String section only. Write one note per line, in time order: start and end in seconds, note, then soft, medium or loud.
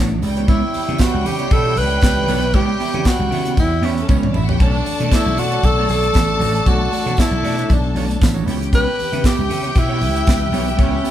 0.23 3.93 G3 loud
0.23 3.93 G5 loud
4.00 4.09 A3 medium
4.00 4.09 A4 medium
4.08 4.17 B3 medium
4.08 4.17 B4 medium
4.17 4.26 C#4 medium
4.17 4.26 C#5 medium
4.26 4.35 D4 medium
4.26 4.35 D5 medium
4.34 4.43 E4 medium
4.34 4.43 E5 medium
4.43 4.52 F#4 medium
4.43 4.52 F#5 loud
4.52 4.60 G4 medium
4.52 4.61 G5 medium
4.60 8.17 A4 medium
4.60 8.17 A5 loud
8.47 11.11 G4 medium
8.47 11.11 G5 loud